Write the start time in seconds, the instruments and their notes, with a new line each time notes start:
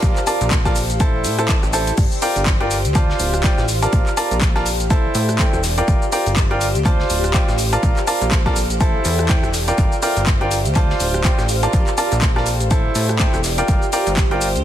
Already playing: grand piano F4 A#4 D5 A5, ambient pad G4 C5 F5
0.03 analog synth bass A#1, ambient pad A4, kick, closed hi-hat, shaker
0.16 clap, shaker
0.26 grand piano F4 A#4 D5 A5, closed hi-hat, open hi-hat, shaker
0.41 analog synth bass A#1, closed hi-hat, shaker
0.51 kick, snare, clap, closed hi-hat, shaker
0.65 grand piano F4 A#4 D5 A5, kick, cross-stick, snare, closed hi-hat, shaker
0.76 ambient pad G4, closed hi-hat, open hi-hat, shaker
0.90 analog synth bass A1, closed hi-hat, shaker
0.99 grand piano E4 A4 C5 A5, ambient pad C5, kick, closed hi-hat, shaker
1.24 analog synth bass A2, closed hi-hat, open hi-hat, shaker
1.39 grand piano E4 A4 C5 A5, cross-stick, closed hi-hat, shaker
1.49 kick, snare, clap, closed hi-hat, shaker
1.63 analog synth bass A1, cross-stick, shaker
1.73 grand piano E4 A4 C5 A5, closed hi-hat, open hi-hat, shaker
1.87 closed hi-hat, shaker
1.97 analog synth bass G1, kick, closed hi-hat, crash, shaker
2.12 shaker
2.22 grand piano F4 A#4 D5 G5, closed hi-hat, open hi-hat, shaker
2.36 analog synth bass G1, closed hi-hat, shaker
2.43 ambient pad F5, kick, clap, closed hi-hat, shaker
2.47 snare, closed hi-hat
2.60 grand piano F4 A#4 D5 G5, cross-stick, closed hi-hat
2.71 closed hi-hat, open hi-hat, shaker
2.85 analog synth bass D2, closed hi-hat, shaker
2.95 grand piano F4 C5 D5 A5, kick, clap, closed hi-hat, shaker
3.10 snare
3.20 analog synth bass D1, closed hi-hat, open hi-hat, shaker
3.34 cross-stick, closed hi-hat, shaker
3.44 grand piano F4 C5 D5 G5, kick, snare, clap, closed hi-hat, shaker
3.58 analog synth bass A1, cross-stick, snare, shaker
3.68 closed hi-hat, open hi-hat, shaker
3.82 grand piano F4 A#4 D5 A5, closed hi-hat, shaker
3.93 analog synth bass A#1, ambient pad A4, kick, closed hi-hat, shaker
4.07 clap, shaker
4.17 grand piano F4 A#4 D5 A5, closed hi-hat, open hi-hat, shaker
4.31 analog synth bass A#1, closed hi-hat, shaker
4.41 kick, snare, clap, closed hi-hat, shaker
4.55 grand piano F4 A#4 D5 A5, cross-stick, snare, closed hi-hat
4.66 ambient pad G4, closed hi-hat, open hi-hat, shaker
4.80 analog synth bass A1, closed hi-hat, shaker
4.90 grand piano E4 A4 C5 A5, kick, closed hi-hat, shaker
5.15 analog synth bass A2, ambient pad C5, closed hi-hat, open hi-hat, shaker
5.29 cross-stick, closed hi-hat, shaker
5.38 grand piano E4 A4 C5 G5, kick, snare, clap, closed hi-hat, shaker
5.53 analog synth bass E1, cross-stick, shaker
5.63 snare, closed hi-hat, open hi-hat, shaker
5.78 grand piano F4 A#4 D5 G5, closed hi-hat, shaker
5.88 analog synth bass G1, kick, closed hi-hat, shaker
6.02 shaker
6.12 grand piano F4 A#4 D5 G5, closed hi-hat, open hi-hat, shaker
6.26 analog synth bass G1, closed hi-hat, shaker
6.33 ambient pad F5, clap
6.37 kick, snare, closed hi-hat, shaker
6.51 grand piano F4 A#4 D5 G5, cross-stick, closed hi-hat
6.61 closed hi-hat, open hi-hat, shaker
6.75 analog synth bass D2, closed hi-hat, shaker
6.85 grand piano F4 C5 D5 A5, kick, clap, closed hi-hat, shaker
7.00 snare
7.10 analog synth bass D1, closed hi-hat, open hi-hat, shaker
7.24 cross-stick, closed hi-hat, shaker
7.34 grand piano F4 C5 D5 G5, kick, snare, clap, closed hi-hat, shaker
7.48 analog synth bass A1, cross-stick, snare, shaker
7.58 closed hi-hat, open hi-hat, shaker
7.73 grand piano F4 A#4 D5 A5, closed hi-hat, shaker
7.83 analog synth bass A#1, ambient pad A4, kick, closed hi-hat, shaker
7.97 clap, shaker
8.07 grand piano F4 A#4 D5 A5, closed hi-hat, open hi-hat, shaker
8.21 analog synth bass A#1, closed hi-hat, shaker
8.32 kick, snare, clap, closed hi-hat, shaker
8.46 grand piano F4 A#4 D5 A5, kick, cross-stick, snare, closed hi-hat
8.56 ambient pad G4, closed hi-hat, open hi-hat, shaker
8.70 analog synth bass A1, closed hi-hat, shaker
8.79 grand piano E4 A4 C5 A5, ambient pad C5, kick, closed hi-hat, shaker
9.05 analog synth bass E2, closed hi-hat, open hi-hat, shaker
9.19 cross-stick, closed hi-hat, shaker
9.29 grand piano E4 A4 C5 G5, kick, snare, clap, closed hi-hat, shaker
9.43 analog synth bass E1, cross-stick, shaker
9.53 snare, closed hi-hat, open hi-hat, shaker
9.68 grand piano F4 A#4 D5 G5, closed hi-hat, shaker
9.78 analog synth bass G1, kick, closed hi-hat, shaker
9.92 shaker
10.00 grand piano F4 A#4 D5 G5, ambient pad F5, closed hi-hat, open hi-hat, shaker
10.17 analog synth bass G1, closed hi-hat, shaker
10.27 kick, snare, clap, closed hi-hat, shaker
10.41 grand piano F4 A#4 D5 G5, cross-stick, closed hi-hat
10.51 closed hi-hat, open hi-hat, shaker
10.65 analog synth bass D2, closed hi-hat, shaker
10.75 grand piano F4 C5 D5 A5, kick, clap, closed hi-hat, shaker
10.90 snare
11.00 analog synth bass D1, closed hi-hat, open hi-hat, shaker
11.14 cross-stick, closed hi-hat, shaker
11.24 grand piano F4 C5 D5 G5, kick, snare, clap, closed hi-hat, shaker
11.39 analog synth bass A1, cross-stick, snare, shaker
11.49 closed hi-hat, open hi-hat, shaker
11.63 grand piano F4 A#4 D5 A5, closed hi-hat, shaker
11.73 analog synth bass A#1, ambient pad A4, kick, closed hi-hat, shaker
11.87 clap, shaker
11.98 grand piano F4 A#4 D5 A5, closed hi-hat, open hi-hat, shaker
12.12 analog synth bass A#1, closed hi-hat, shaker
12.21 kick, snare, clap, closed hi-hat, shaker
12.36 grand piano F4 A#4 D5 A5, cross-stick, snare, closed hi-hat
12.46 ambient pad G4, closed hi-hat, open hi-hat, shaker
12.60 analog synth bass A1, closed hi-hat, shaker
12.71 grand piano E4 A4 C5 A5, kick, closed hi-hat, shaker
12.79 ambient pad C5
12.95 analog synth bass A2, closed hi-hat, open hi-hat, shaker
13.09 cross-stick, closed hi-hat, shaker
13.19 grand piano E4 A4 C5 G5, kick, snare, clap, closed hi-hat, shaker
13.34 analog synth bass E1, cross-stick, shaker
13.44 snare, closed hi-hat, open hi-hat, shaker
13.58 grand piano F4 A#4 D5 G5, closed hi-hat, shaker
13.68 analog synth bass G1, kick, closed hi-hat, shaker
13.82 shaker
13.92 grand piano F4 A#4 D5 G5, closed hi-hat, open hi-hat, shaker
14.03 analog synth bass G1, ambient pad F5, closed hi-hat, shaker
14.17 kick, snare, clap, closed hi-hat, shaker
14.31 grand piano F4 A#4 D5 G5, cross-stick, closed hi-hat
14.41 closed hi-hat, open hi-hat, shaker
14.56 analog synth bass D2, closed hi-hat, shaker